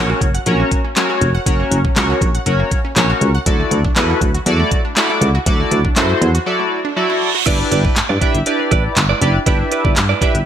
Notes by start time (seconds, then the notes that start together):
Already playing: A#1 C#4 F#4 A#4 C#5
0.10 F#4
0.21 F#1 F#3, kick, closed hi-hat
0.35 F#5, closed hi-hat
0.46 A#1 F#3 C#4 F#4 A#4 C#5, closed hi-hat
0.59 A#3
0.71 kick, closed hi-hat
0.85 C#4
0.96 F#3 C#4 F#4 A#4 C#5, snare, clap, closed hi-hat
1.10 F#4
1.21 F1, closed hi-hat
1.35 F#5
1.46 F#1 F#3 C#4 F#4 A#4 C#5, kick, closed hi-hat
1.60 A#3
1.71 F#1 F#3, closed hi-hat
1.85 C#4, kick
1.96 C#2 F#3 C#4 F#4 A#4 C#5, snare, clap, closed hi-hat
2.10 F#4
2.21 A#1 F#3, kick, closed hi-hat
2.35 F#5, closed hi-hat
2.46 F#1 F#3 C#4 F#4 A#4 C#5, closed hi-hat
2.60 A#3
2.71 kick, closed hi-hat
2.85 C#4
2.96 A#1 F#3 C#4 F#4 A#4 C#5, snare, clap, closed hi-hat
3.10 F#4
3.21 C#2, closed hi-hat
3.35 F#5
3.46 D2 F#3 E4 F#4 A4 D5, kick, closed hi-hat
3.60 A3
3.71 D2 F#3, closed hi-hat
3.85 D4, kick
3.96 E2 F#3 E4 F#4 A4 B4, snare, clap, closed hi-hat
4.10 E4
4.21 D2 F#3, kick, closed hi-hat
4.35 F#4, closed hi-hat
4.46 E2 F#3 E4 F#4 A4 D5, closed hi-hat
4.60 A3
4.71 kick, closed hi-hat
4.85 D4
4.96 F#3 E4 F#4 A4 D5, snare, clap, closed hi-hat
5.10 E4
5.21 C#2, closed hi-hat
5.35 F#4
5.46 D2 F#3 E4 F#4 A4 D5, kick, closed hi-hat
5.60 A3
5.71 D2 F#3, closed hi-hat
5.85 D4, kick
5.96 F#2 F#3 E4 F#4 A4 C5, snare, clap, closed hi-hat
6.10 E4
6.21 E2 F#3, closed hi-hat
6.35 F#4, closed hi-hat
6.46 F#3 E4 F#4 A4 D5, reverse cymbal
6.60 A3
6.85 D4
6.96 F#3 E4 F#4 A4 D5
7.10 E4
7.35 F#4
7.46 G1 D4 E4 G4 B4 D5, kick, closed hi-hat, crash
7.59 muted clean electric guitar stroke
7.71 G1 E4 B4 D5, closed hi-hat
7.84 E4 B4 D5, kick
7.96 G2, muted clean electric guitar stroke, snare, clap, closed hi-hat
8.09 G2 E4 B4 D5
8.21 D4 E4 G4 B4 D5 E5, kick, closed hi-hat
8.35 G1, muted clean electric guitar stroke, closed hi-hat
8.46 D4 E4 G4 B4 D5, muted clean electric guitar stroke, closed hi-hat
8.60 muted clean electric guitar stroke
8.71 A1 E4 B4 D5, kick, closed hi-hat
8.84 muted clean electric guitar stroke
8.96 G1, muted clean electric guitar stroke, snare, clap, closed hi-hat
9.09 E4 B4 D5
9.21 F#1 D4 E4 G4 B4 D5, closed hi-hat
9.35 muted clean electric guitar stroke
9.46 G1 D4 E4 G4 B4 D5 E5, kick, closed hi-hat
9.60 muted clean electric guitar stroke
9.71 E4 B4 D5, closed hi-hat
9.84 G1 E4 B4 D5, kick
9.96 G2, muted clean electric guitar stroke, snare, clap, closed hi-hat
10.09 E4 B4 D5
10.21 D4 E4 G4 B4 D5 E5, kick, closed hi-hat
10.34 G1, muted clean electric guitar stroke, closed hi-hat